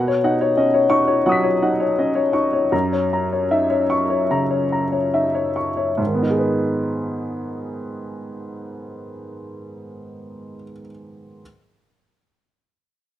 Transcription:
Already playing: B2 F#5
0.08 C#5
0.24 D#4 F#5
0.41 C#5
0.57 C#4 D#5
0.74 C#5
0.90 D#4 C#6
1.08 C#5
1.26 F#3 F#5 C#6 D#6
1.32 B6
1.44 C#5
1.62 D#4 F#5
1.80 C#5
1.99 C#4 D#5
2.15 C#5
2.33 D#4 C#6
2.53 C#5
2.72 F#2 A#5
2.93 C#5
3.13 A#5
3.32 C#5
3.51 D#4 E5
3.70 C#5
3.90 C#6
4.10 C#5
4.31 C#3 A#5
4.51 C#5
4.72 A#5
4.92 C#5
5.14 D#4 E5
5.35 C#5
5.56 C#6
5.77 C#5
5.98 G#2
6.06 D#3
6.14 B3
6.22 D#4
6.30 G#4
6.38 B4

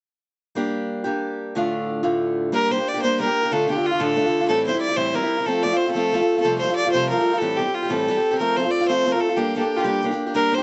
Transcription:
0.55 G3 A#3 D4 G4
1.04 G3 A#3 D4 G4
1.55 D2 A2 D3 A3 D4 F4
2.03 D2 A2 D3 A3 D4 F4
2.52 G3 A#3 D4 G4 A#4
2.71 G3 A#3 D4 G4 C5
2.78 A#3 D4 G4
2.88 D5
2.94 A#3 D4 G4
3.02 G3 A#3 D4 G4 C5
3.20 G3 A#3 D4 G4 A#4
3.26 A#3 D4 G4
3.43 A#3 D4 G4
3.51 D2 A2 D3 A3 D4 F4 A4
3.68 D3 A3 D4 F4 G4
3.75 D3 A3 D4 F4
3.86 F4
3.91 D3 A3 D4 F4
3.99 D2 A2 D3 A3 D4 F4 A4
4.16 D3 A3 D4 F4
4.25 D3 A3 D4 F4
4.40 D3 A3 D4 F4
4.48 A2 E3 G3 C4 E4 A4
4.67 E3 G3 C4 E4 C5
4.74 G3 C4 E4
4.81 D5
4.89 G3 C4 E4
4.96 A2 E3 G3 C4 E4 C5
5.13 E3 G3 C4 E4 A#4
5.22 G3 C4 E4
5.38 G3 C4 E4
5.46 F3 A3 C4 F4 A4
5.63 F3 A3 C4 D5
5.67 F4
5.72 A3 C4 F4
5.77 C5
5.87 A3 C4 F4
5.91 F3 A4
5.96 A3 C4 F4
6.12 F3 A3 C4 F4
6.20 A3 C4 F4
6.37 A3 C4 F4 A4
6.43 F2 C3 F3 G3 A3 F4
6.59 F3 C5
6.63 G3 A3 F4
6.70 F3 G3 A3 F4
6.75 D5
6.85 F3 G3 A3 F4
6.92 F2 C3 F3 G3 A3 C5
6.96 F4
7.09 F3 G3 A3 F4 A#4
7.18 F3 G3 A3 F4
7.33 F3 G3 A3 F4
7.38 A2 E3 A4
7.42 G3 C4 G4
7.57 E3 G3 C4 G4
7.61 G4
7.66 G3 C4 G4
7.74 F4
7.83 G3 C4 G4
7.89 A2 E3 G3 C4 G4 A4
8.08 E3 G3 C4 G4
8.17 G3 C4 G4
8.31 G3 C4 G4
8.38 F3 A3 C4 F4 A#4
8.57 F3 A3 C4 F4 C5
8.64 A3 C4 F4
8.71 D5
8.81 A3 C4 F4
8.88 F3 A3 C4 F4 C5
9.06 F3 A3 C4 F4
9.12 F4 A#4
9.16 A3 C4 A4
9.29 A3 C4 F4
9.36 G3 A#3 D4 G4
9.55 G3 A#3 D4 G4 A4
9.62 A#3 D4 G4
9.76 D4 F4 G4
9.80 A#3
9.84 G3 A#3 D4 G4
10.03 G3 A#3 D4 G4
10.11 A#3 D4 G4
10.26 A#3 D4 G4
10.34 G3 A#3 D4 G4 A#4
10.52 G3 A#3 D4 G4 C5
10.58 D4 G4

